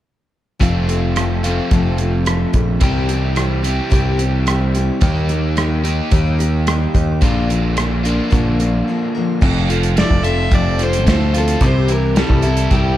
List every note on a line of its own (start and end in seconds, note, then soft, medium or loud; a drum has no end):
0.59 1.59 F1 medium
0.59 1.42 F2 medium
0.59 1.42 C3 medium
0.59 0.88 F3 medium
0.59 1.42 A3 medium
0.59 0.88 C4 medium
0.59 0.87 F4 medium
0.59 0.86 A4 medium
0.59 kick loud
0.59 closed hi-hat medium
0.87 1.16 C4 soft
0.87 1.16 F4 soft
0.87 1.15 A4 soft
0.87 closed hi-hat medium
1.15 1.43 F3 medium
1.15 1.44 C4 medium
1.15 1.44 F4 medium
1.15 1.43 A4 medium
1.15 cross-stick loud
1.15 closed hi-hat medium
1.44 2.81 F2 medium
1.44 2.79 C3 medium
1.44 2.81 F3 medium
1.44 2.81 A3 medium
1.44 1.72 C4 soft
1.44 1.72 F4 soft
1.44 1.71 A4 medium
1.44 closed hi-hat medium
1.71 2.45 F1 medium
1.71 1.99 F3 medium
1.71 2.00 C4 medium
1.71 1.99 F4 medium
1.71 1.97 A4 medium
1.71 kick medium
1.71 closed hi-hat medium
1.98 2.25 C4 soft
1.98 2.26 F4 soft
1.98 2.26 A4 medium
1.98 closed hi-hat medium
2.25 2.53 F3 medium
2.25 2.54 C4 medium
2.25 2.52 F4 medium
2.25 cross-stick loud
2.25 closed hi-hat medium
2.29 2.52 A4 medium
2.53 2.79 A#1 medium
2.53 2.81 C4 soft
2.53 2.81 F4 soft
2.53 2.81 A4 medium
2.53 kick medium
2.53 closed hi-hat medium
2.81 3.79 C2 loud
2.81 3.09 C3 medium
2.81 3.62 E3 medium
2.81 3.09 G3 medium
2.81 3.10 C4 medium
2.81 3.10 E4 medium
2.81 3.08 G4 medium
2.81 kick loud
2.81 closed hi-hat medium
3.09 3.35 C4 soft
3.09 3.37 E4 soft
3.09 3.37 G4 medium
3.09 closed hi-hat medium
3.35 3.64 G3 medium
3.35 3.64 C4 medium
3.35 3.64 E4 medium
3.35 cross-stick medium
3.35 closed hi-hat medium
3.39 3.62 G4 medium
3.63 5.01 C3 medium
3.63 5.01 E3 medium
3.63 5.01 G3 medium
3.63 3.89 C4 soft
3.63 3.90 E4 soft
3.63 3.90 G4 medium
3.63 closed hi-hat medium
3.90 4.90 C2 medium
3.90 4.18 C3 medium
3.90 4.19 G3 medium
3.90 4.19 C4 medium
3.90 4.17 E4 medium
3.90 4.16 G4 medium
3.90 kick medium
3.90 closed hi-hat medium
4.17 4.46 C4 soft
4.17 4.47 E4 soft
4.17 4.46 G4 medium
4.17 closed hi-hat medium
4.46 4.74 G3 medium
4.46 4.75 C4 medium
4.46 4.75 E4 medium
4.46 4.74 G4 medium
4.46 cross-stick loud
4.46 closed hi-hat medium
4.75 5.02 C4 soft
4.75 5.02 E4 medium
4.75 5.02 G4 medium
4.75 closed hi-hat medium
5.01 6.00 D#2 loud
5.01 5.29 D#3 medium
5.01 5.30 G3 medium
5.01 5.30 A#3 medium
5.01 5.28 D#4 medium
5.01 5.27 G4 medium
5.01 kick loud
5.01 closed hi-hat medium
5.29 5.55 A#3 soft
5.29 5.57 D#4 soft
5.29 5.57 G4 medium
5.29 closed hi-hat medium
5.56 5.84 G3 medium
5.56 5.85 A#3 medium
5.56 5.84 D#4 medium
5.56 5.82 G4 medium
5.56 cross-stick loud
5.56 closed hi-hat medium
5.84 7.21 D#3 medium
5.84 6.10 A#3 soft
5.84 6.11 D#4 soft
5.84 6.12 G4 medium
5.84 closed hi-hat medium
6.10 6.86 D#2 loud
6.10 6.39 D#3 medium
6.10 6.39 G3 medium
6.10 6.40 A#3 medium
6.10 6.40 D#4 medium
6.10 6.37 G4 medium
6.10 kick medium
6.10 closed hi-hat medium
6.39 6.67 A#3 soft
6.39 6.68 D#4 medium
6.39 6.67 G4 medium
6.39 closed hi-hat medium
6.66 6.94 G3 medium
6.66 6.95 A#3 medium
6.66 6.94 D#4 medium
6.66 6.93 G4 medium
6.66 cross-stick medium
6.66 closed hi-hat medium
6.94 7.19 D#2 medium
6.94 7.21 A#3 soft
6.94 7.22 D#4 medium
6.94 7.22 G4 medium
6.94 kick medium
6.94 closed hi-hat medium
7.21 8.20 A#1 loud
7.21 7.49 A#2 medium
7.21 7.49 D3 medium
7.21 7.50 F3 medium
7.21 7.49 A#3 medium
7.21 7.49 D4 medium
7.21 8.02 F4 medium
7.21 7.47 A#4 loud
7.21 kick loud
7.21 closed hi-hat medium
7.49 7.76 F3 soft
7.49 7.77 A#3 soft
7.49 7.78 D4 medium
7.49 7.77 A#4 medium
7.49 closed hi-hat medium
7.77 8.05 F3 medium
7.77 8.05 A#3 medium
7.77 8.05 D4 medium
7.77 8.04 A#4 medium
7.77 cross-stick loud
7.77 closed hi-hat medium
8.03 9.41 A#2 medium
8.03 9.41 D3 medium
8.03 8.30 A#3 soft
8.03 8.30 D4 soft
8.03 9.40 F4 medium
8.03 8.31 A#4 medium
8.03 closed hi-hat medium
8.08 8.30 F3 soft
8.30 8.81 A#1 loud
8.30 8.59 A#2 medium
8.30 8.59 D3 medium
8.30 8.59 F3 medium
8.30 8.59 A#3 medium
8.30 8.59 D4 medium
8.30 8.58 A#4 medium
8.30 kick medium
8.30 closed hi-hat medium
8.59 8.86 F3 soft
8.59 8.88 A#3 medium
8.59 8.88 D4 medium
8.59 8.87 A#4 medium
8.59 closed hi-hat medium
8.88 9.15 F3 medium
8.88 9.16 A#3 medium
8.88 9.15 D4 medium
8.88 9.13 A#4 medium
9.15 9.40 F3 medium
9.15 9.41 A#3 medium
9.15 9.42 D4 medium
9.15 9.42 A#4 medium
9.41 10.03 F1 loud
9.41 10.80 F2 medium
9.41 9.69 F3 medium
9.41 9.69 C4 medium
9.41 9.70 F4 medium
9.41 9.68 A4 medium
9.41 kick loud
9.41 crash medium
9.69 10.77 F3 medium
9.69 9.97 C4 soft
9.69 9.98 F4 medium
9.69 9.97 A4 medium
9.69 closed hi-hat medium
9.83 closed hi-hat medium
9.96 10.25 F3 medium
9.96 11.05 A3 medium
9.96 10.24 C4 medium
9.96 10.22 F4 medium
9.96 10.21 A4 medium
9.96 10.25 D5 loud
9.96 snare loud
9.96 closed hi-hat medium
10.11 10.47 F1 medium
10.11 kick medium
10.22 10.52 C4 soft
10.22 10.51 F4 soft
10.22 10.51 A4 medium
10.22 10.56 E5 loud
10.22 closed hi-hat medium
10.52 11.06 F1 medium
10.52 10.80 F3 medium
10.52 10.80 C4 medium
10.52 10.80 F4 medium
10.52 10.79 A4 medium
10.52 10.84 D5 medium
10.52 kick medium
10.52 closed hi-hat medium
10.79 11.61 F3 medium
10.79 11.07 F4 medium
10.79 11.07 A4 medium
10.79 closed hi-hat medium
10.83 11.06 C4 soft
10.83 11.08 C5 medium
10.93 closed hi-hat medium
11.06 11.55 D2 medium
11.06 11.34 F3 medium
11.06 11.62 A3 medium
11.06 11.35 C4 medium
11.06 11.35 F4 medium
11.06 11.34 A4 medium
11.06 11.40 C5 medium
11.06 kick medium
11.06 snare loud
11.06 closed hi-hat medium
11.34 11.63 F4 soft
11.34 11.62 A4 medium
11.34 11.67 A4 medium
11.34 closed hi-hat medium
11.39 11.62 C4 soft
11.48 closed hi-hat medium
11.61 12.22 C2 loud
11.61 11.90 C3 medium
11.61 11.90 G3 medium
11.61 11.90 C4 medium
11.61 11.90 E4 medium
11.61 11.89 G4 medium
11.61 kick loud
11.61 closed hi-hat medium
11.66 11.94 C5 medium
11.88 12.96 E3 medium
11.88 12.18 E4 soft
11.88 12.17 G4 medium
11.88 12.21 A#4 medium
11.88 closed hi-hat medium
11.93 12.16 C4 soft
12.16 12.44 C3 medium
12.16 12.45 G3 medium
12.16 12.45 C4 medium
12.16 12.44 E4 medium
12.16 12.42 G4 medium
12.16 12.73 A4 medium
12.16 snare loud
12.16 closed hi-hat medium
12.30 12.67 C2 medium
12.30 kick medium
12.42 12.71 C4 soft
12.42 12.72 E4 soft
12.42 12.71 G4 soft
12.42 closed hi-hat medium
12.57 closed hi-hat medium
12.71 12.97 C2 medium
12.71 12.97 G3 medium
12.71 12.97 C4 medium
12.71 12.97 E4 medium
12.71 12.97 G4 medium
12.71 kick loud
12.71 closed hi-hat soft